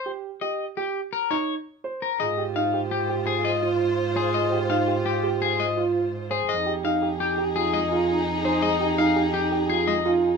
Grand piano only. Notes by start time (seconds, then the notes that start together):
0.06 G4
0.42 G4
0.77 G4
1.30 D#4
1.84 C5
2.20 G#4
2.38 G4
2.56 D#4
2.74 G4
3.09 G4
3.63 F4
4.16 C5
4.34 G#4
4.52 G4
4.70 D#4
4.87 G4
5.23 G4
5.77 F4
6.30 C5
6.48 G#4
6.66 G4
6.84 D#4
7.02 G4
7.38 G4
7.56 F4
7.92 F4
8.45 C5
8.62 G#4
8.80 G4
8.98 D#4
9.16 G4
9.52 G4
9.70 F4
10.06 F4